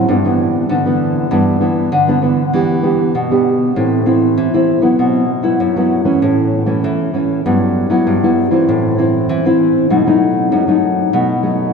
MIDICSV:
0, 0, Header, 1, 2, 480
1, 0, Start_track
1, 0, Key_signature, 1, "minor"
1, 0, Tempo, 614754
1, 58, Time_signature, 4, 2, 24, 8
1, 9160, End_track
2, 0, Start_track
2, 0, Title_t, "Nylon-string guitar"
2, 0, Program_c, 0, 24
2, 66, Note_on_c, 0, 43, 73
2, 67, Note_on_c, 0, 52, 56
2, 70, Note_on_c, 0, 59, 59
2, 73, Note_on_c, 0, 62, 66
2, 144, Note_off_c, 0, 52, 0
2, 144, Note_off_c, 0, 59, 0
2, 147, Note_off_c, 0, 62, 0
2, 192, Note_on_c, 0, 52, 64
2, 196, Note_on_c, 0, 59, 65
2, 198, Note_on_c, 0, 62, 66
2, 506, Note_off_c, 0, 52, 0
2, 507, Note_off_c, 0, 59, 0
2, 509, Note_off_c, 0, 62, 0
2, 518, Note_off_c, 0, 43, 0
2, 542, Note_on_c, 0, 50, 71
2, 545, Note_on_c, 0, 52, 56
2, 549, Note_on_c, 0, 59, 64
2, 550, Note_on_c, 0, 62, 62
2, 622, Note_off_c, 0, 52, 0
2, 623, Note_off_c, 0, 59, 0
2, 625, Note_off_c, 0, 62, 0
2, 668, Note_on_c, 0, 52, 57
2, 671, Note_on_c, 0, 59, 63
2, 675, Note_on_c, 0, 62, 71
2, 984, Note_off_c, 0, 52, 0
2, 985, Note_off_c, 0, 59, 0
2, 987, Note_off_c, 0, 62, 0
2, 996, Note_off_c, 0, 50, 0
2, 1022, Note_on_c, 0, 43, 74
2, 1024, Note_on_c, 0, 52, 58
2, 1028, Note_on_c, 0, 59, 64
2, 1029, Note_on_c, 0, 62, 60
2, 1221, Note_off_c, 0, 52, 0
2, 1222, Note_off_c, 0, 59, 0
2, 1224, Note_off_c, 0, 62, 0
2, 1254, Note_on_c, 0, 52, 61
2, 1258, Note_on_c, 0, 59, 62
2, 1262, Note_on_c, 0, 62, 59
2, 1476, Note_off_c, 0, 43, 0
2, 1480, Note_off_c, 0, 52, 0
2, 1482, Note_off_c, 0, 59, 0
2, 1484, Note_off_c, 0, 62, 0
2, 1499, Note_on_c, 0, 50, 80
2, 1622, Note_on_c, 0, 52, 73
2, 1627, Note_on_c, 0, 59, 79
2, 1631, Note_on_c, 0, 62, 73
2, 1701, Note_off_c, 0, 52, 0
2, 1704, Note_off_c, 0, 59, 0
2, 1704, Note_off_c, 0, 62, 0
2, 1732, Note_on_c, 0, 52, 59
2, 1735, Note_on_c, 0, 59, 59
2, 1739, Note_on_c, 0, 62, 67
2, 1888, Note_off_c, 0, 52, 0
2, 1890, Note_off_c, 0, 59, 0
2, 1892, Note_off_c, 0, 62, 0
2, 1953, Note_off_c, 0, 50, 0
2, 1979, Note_on_c, 0, 52, 70
2, 1981, Note_on_c, 0, 59, 59
2, 1982, Note_on_c, 0, 62, 64
2, 1988, Note_on_c, 0, 67, 58
2, 2179, Note_off_c, 0, 59, 0
2, 2181, Note_off_c, 0, 62, 0
2, 2182, Note_off_c, 0, 67, 0
2, 2208, Note_on_c, 0, 59, 63
2, 2211, Note_on_c, 0, 62, 63
2, 2216, Note_on_c, 0, 67, 64
2, 2434, Note_off_c, 0, 52, 0
2, 2458, Note_on_c, 0, 47, 68
2, 2533, Note_off_c, 0, 59, 0
2, 2535, Note_off_c, 0, 62, 0
2, 2537, Note_off_c, 0, 67, 0
2, 2585, Note_on_c, 0, 59, 67
2, 2589, Note_on_c, 0, 62, 63
2, 2590, Note_on_c, 0, 67, 65
2, 2902, Note_off_c, 0, 59, 0
2, 2903, Note_off_c, 0, 62, 0
2, 2904, Note_off_c, 0, 67, 0
2, 2913, Note_off_c, 0, 47, 0
2, 2938, Note_on_c, 0, 45, 71
2, 2941, Note_on_c, 0, 52, 59
2, 2942, Note_on_c, 0, 60, 55
2, 2945, Note_on_c, 0, 64, 65
2, 3138, Note_off_c, 0, 52, 0
2, 3141, Note_off_c, 0, 60, 0
2, 3141, Note_off_c, 0, 64, 0
2, 3168, Note_on_c, 0, 52, 58
2, 3171, Note_on_c, 0, 60, 64
2, 3178, Note_on_c, 0, 64, 63
2, 3393, Note_off_c, 0, 45, 0
2, 3406, Note_off_c, 0, 52, 0
2, 3416, Note_on_c, 0, 52, 76
2, 3495, Note_off_c, 0, 60, 0
2, 3497, Note_off_c, 0, 64, 0
2, 3534, Note_off_c, 0, 52, 0
2, 3543, Note_on_c, 0, 52, 66
2, 3547, Note_on_c, 0, 60, 73
2, 3547, Note_on_c, 0, 64, 78
2, 3741, Note_off_c, 0, 52, 0
2, 3742, Note_off_c, 0, 60, 0
2, 3743, Note_off_c, 0, 64, 0
2, 3761, Note_on_c, 0, 54, 59
2, 3764, Note_on_c, 0, 59, 66
2, 3766, Note_on_c, 0, 64, 61
2, 3896, Note_on_c, 0, 47, 69
2, 4090, Note_off_c, 0, 54, 0
2, 4091, Note_off_c, 0, 59, 0
2, 4092, Note_off_c, 0, 64, 0
2, 4237, Note_on_c, 0, 54, 63
2, 4241, Note_on_c, 0, 59, 65
2, 4244, Note_on_c, 0, 64, 74
2, 4352, Note_off_c, 0, 47, 0
2, 4373, Note_on_c, 0, 42, 73
2, 4448, Note_off_c, 0, 54, 0
2, 4450, Note_off_c, 0, 59, 0
2, 4451, Note_off_c, 0, 64, 0
2, 4500, Note_on_c, 0, 54, 64
2, 4504, Note_on_c, 0, 59, 65
2, 4507, Note_on_c, 0, 64, 69
2, 4700, Note_off_c, 0, 54, 0
2, 4700, Note_off_c, 0, 59, 0
2, 4703, Note_off_c, 0, 64, 0
2, 4721, Note_on_c, 0, 52, 57
2, 4727, Note_on_c, 0, 57, 56
2, 4727, Note_on_c, 0, 61, 71
2, 4830, Note_off_c, 0, 42, 0
2, 4858, Note_on_c, 0, 45, 72
2, 5170, Note_off_c, 0, 52, 0
2, 5171, Note_off_c, 0, 57, 0
2, 5173, Note_off_c, 0, 61, 0
2, 5201, Note_on_c, 0, 52, 59
2, 5204, Note_on_c, 0, 57, 70
2, 5208, Note_on_c, 0, 61, 72
2, 5312, Note_off_c, 0, 45, 0
2, 5332, Note_off_c, 0, 52, 0
2, 5341, Note_on_c, 0, 52, 80
2, 5532, Note_off_c, 0, 57, 0
2, 5533, Note_off_c, 0, 61, 0
2, 5563, Note_off_c, 0, 52, 0
2, 5572, Note_on_c, 0, 52, 62
2, 5577, Note_on_c, 0, 57, 58
2, 5580, Note_on_c, 0, 61, 64
2, 5775, Note_off_c, 0, 52, 0
2, 5778, Note_off_c, 0, 57, 0
2, 5778, Note_off_c, 0, 61, 0
2, 5821, Note_on_c, 0, 54, 54
2, 5822, Note_on_c, 0, 43, 79
2, 5825, Note_on_c, 0, 59, 64
2, 5829, Note_on_c, 0, 64, 64
2, 6140, Note_off_c, 0, 54, 0
2, 6142, Note_off_c, 0, 59, 0
2, 6143, Note_off_c, 0, 64, 0
2, 6166, Note_on_c, 0, 54, 70
2, 6169, Note_on_c, 0, 59, 67
2, 6173, Note_on_c, 0, 64, 72
2, 6275, Note_off_c, 0, 43, 0
2, 6299, Note_on_c, 0, 43, 74
2, 6372, Note_off_c, 0, 54, 0
2, 6374, Note_off_c, 0, 59, 0
2, 6376, Note_off_c, 0, 64, 0
2, 6426, Note_on_c, 0, 54, 64
2, 6432, Note_on_c, 0, 59, 59
2, 6432, Note_on_c, 0, 64, 70
2, 6623, Note_off_c, 0, 54, 0
2, 6625, Note_off_c, 0, 59, 0
2, 6625, Note_off_c, 0, 64, 0
2, 6644, Note_on_c, 0, 52, 58
2, 6647, Note_on_c, 0, 60, 65
2, 6650, Note_on_c, 0, 64, 70
2, 6754, Note_off_c, 0, 43, 0
2, 6782, Note_on_c, 0, 45, 77
2, 6971, Note_off_c, 0, 52, 0
2, 6973, Note_off_c, 0, 60, 0
2, 6975, Note_off_c, 0, 64, 0
2, 7012, Note_on_c, 0, 52, 57
2, 7016, Note_on_c, 0, 60, 69
2, 7021, Note_on_c, 0, 64, 61
2, 7235, Note_off_c, 0, 45, 0
2, 7246, Note_off_c, 0, 52, 0
2, 7256, Note_on_c, 0, 52, 79
2, 7337, Note_off_c, 0, 60, 0
2, 7340, Note_off_c, 0, 64, 0
2, 7371, Note_off_c, 0, 52, 0
2, 7380, Note_on_c, 0, 52, 68
2, 7384, Note_on_c, 0, 60, 69
2, 7389, Note_on_c, 0, 64, 79
2, 7700, Note_off_c, 0, 52, 0
2, 7702, Note_off_c, 0, 60, 0
2, 7704, Note_off_c, 0, 64, 0
2, 7733, Note_on_c, 0, 47, 69
2, 7734, Note_on_c, 0, 54, 60
2, 7736, Note_on_c, 0, 57, 62
2, 7739, Note_on_c, 0, 63, 68
2, 7816, Note_off_c, 0, 54, 0
2, 7818, Note_off_c, 0, 57, 0
2, 7819, Note_off_c, 0, 63, 0
2, 7860, Note_on_c, 0, 54, 62
2, 7866, Note_on_c, 0, 57, 64
2, 7866, Note_on_c, 0, 63, 69
2, 8180, Note_off_c, 0, 54, 0
2, 8182, Note_off_c, 0, 57, 0
2, 8183, Note_off_c, 0, 63, 0
2, 8191, Note_off_c, 0, 47, 0
2, 8213, Note_on_c, 0, 42, 75
2, 8215, Note_on_c, 0, 54, 63
2, 8218, Note_on_c, 0, 57, 58
2, 8220, Note_on_c, 0, 63, 63
2, 8297, Note_off_c, 0, 54, 0
2, 8298, Note_off_c, 0, 57, 0
2, 8300, Note_off_c, 0, 63, 0
2, 8335, Note_on_c, 0, 54, 63
2, 8341, Note_on_c, 0, 57, 61
2, 8342, Note_on_c, 0, 63, 70
2, 8658, Note_off_c, 0, 54, 0
2, 8659, Note_off_c, 0, 57, 0
2, 8661, Note_off_c, 0, 63, 0
2, 8671, Note_off_c, 0, 42, 0
2, 8692, Note_on_c, 0, 47, 75
2, 8696, Note_on_c, 0, 54, 53
2, 8697, Note_on_c, 0, 57, 58
2, 8701, Note_on_c, 0, 63, 65
2, 8836, Note_off_c, 0, 54, 0
2, 8838, Note_off_c, 0, 57, 0
2, 8840, Note_off_c, 0, 63, 0
2, 8923, Note_on_c, 0, 54, 59
2, 8927, Note_on_c, 0, 57, 55
2, 8931, Note_on_c, 0, 63, 66
2, 9151, Note_off_c, 0, 47, 0
2, 9160, Note_off_c, 0, 54, 0
2, 9160, Note_off_c, 0, 57, 0
2, 9160, Note_off_c, 0, 63, 0
2, 9160, End_track
0, 0, End_of_file